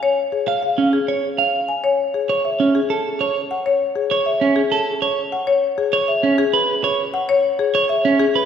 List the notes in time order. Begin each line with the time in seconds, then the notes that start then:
0.03 C#5
0.32 G#4
0.48 F5
0.63 F5
0.78 C#4
0.93 G#4
1.08 C#5
1.38 F5
1.69 G#5
1.84 C#5
2.14 G#4
2.29 C#5
2.45 E5
2.60 C#4
2.75 G#4
2.90 A4
3.21 C#5
3.51 F#5
3.66 C#5
3.96 G#4
4.11 C#5
4.26 E5
4.41 C#4
4.56 G#4
4.72 A4
5.02 C#5
5.32 F#5
5.47 C#5
5.78 G#4
5.93 C#5
6.08 E5
6.23 C#4
6.38 G#4
6.53 B4
6.84 C#5
7.14 F#5
7.29 C#5
7.59 G#4
7.75 C#5
7.89 E5
8.05 C#4
8.19 G#4
8.35 B4